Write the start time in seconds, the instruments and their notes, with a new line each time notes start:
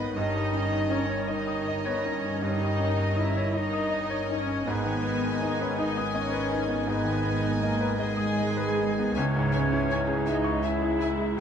Already playing: double bass section G#1, grand piano G#2 D#3 B3 D#4 B4 D#5 D#6, cello section G#2, bassoon D#3, violin section B4 D#5, clarinet D#5, oboe B5
0.15 double bass section G1, grand piano G2, cello section G2, bassoon D#3, viola section D#4, violin section A#4 C#5 D#5, flute D#5, clarinet D#5, oboe A#5
0.36 grand piano G3
0.53 grand piano C#4
0.71 grand piano D#4
0.90 french horn section C#4 D#4, viola section C#4, flute C#5, grand piano D#5
1.09 grand piano C#5
1.28 bassoon D#3, viola section D#4, violin section A#4 C#5 D#5, grand piano D#5, flute D#5, clarinet D#5, oboe A#5
1.47 grand piano D#6
1.68 grand piano D#5
1.84 viola section B3, flute B4, grand piano C#5
2.04 french horn section C#4 D#4, viola section C#4, grand piano D#4, flute C#5
2.26 grand piano C#4
2.42 grand piano G2, bassoon D#3, viola section D#4, violin section A#4 C#5 D#5, clarinet D#5, flute D#5, oboe A#5
2.61 grand piano G3
2.80 grand piano C#4
2.97 grand piano D#4
3.16 french horn section C#4, viola section E4, grand piano D#5
3.21 french horn section D#4, flute E5
3.37 grand piano C#5
3.54 bassoon D#3, viola section D#4, violin section A#4 C#5 D#5, grand piano D#5, clarinet D#5, flute D#5, oboe A#5
3.73 grand piano D#6
3.91 grand piano D#5
4.10 grand piano C#5
4.29 viola section C#4, french horn section C#4 D#4, grand piano D#4, flute C#5
4.47 grand piano C#4
4.67 double bass section G#1, grand piano G#2, cello section G#2, bassoon D#3, viola section B3, violin section G#4 D#5 G#5, flute B4, clarinet D#5, oboe G#5
4.85 grand piano D#3
5.03 grand piano B3
5.23 grand piano D#4
5.42 french horn section B3 D#4, viola section D#4, grand piano D#5, flute D#5
5.61 viola section C#4, grand piano B4, flute C#5
5.78 bassoon D#3, viola section D#4, violin section G#4 D#5 G#5, clarinet D#5, grand piano D#5, flute D#5, oboe G#5
5.97 viola section B3, flute B4, grand piano D#6
6.14 viola section C#4, flute C#5, grand piano D#5
6.32 grand piano B4
6.51 french horn section B3 D#4, grand piano D#4
6.69 grand piano B3
6.88 grand piano G#2, bassoon D#3, viola section B3, violin section G#4 D#5 G#5, flute B4, clarinet D#5, oboe G#5
7.05 grand piano D#3
7.25 grand piano B3
7.43 grand piano D#4
7.61 viola section A#3, french horn section B3 D#4, flute A#4, grand piano D#5
7.81 grand piano B4
7.98 bassoon D#3, viola section G#3, violin section G#4 D#5 G#5, flute G#4, clarinet D#5, grand piano D#5, oboe G#5
8.17 grand piano D#6
8.37 grand piano D#5
8.57 grand piano B4
8.76 french horn section B3 D#4, grand piano D#4
8.99 grand piano B3
9.15 double bass section C#2, cello section C#2, grand piano C#2, bassoon E3, french horn section G#3 E4, viola section C#4, violin section G#4 E5 G#5, flute C#5, clarinet C#5, oboe G#5
9.36 grand piano G#2
9.53 violin section G#4 E5 G#5
9.57 grand piano G#3
9.72 grand piano E4
9.90 violin section G#4 E5 G#5, grand piano C#5
10.07 grand piano G#4
10.26 double bass section C#2, cello section C#2, viola section D#4, violin section G#4 E5 G#5, flute D#5, grand piano E5
10.44 grand piano C#6
10.63 viola section E4, violin section G#4 E5 G#5, grand piano E5, flute E5
10.81 grand piano G#4
10.99 grand piano E4, violin section G#4 E5 G#5
11.18 grand piano G#3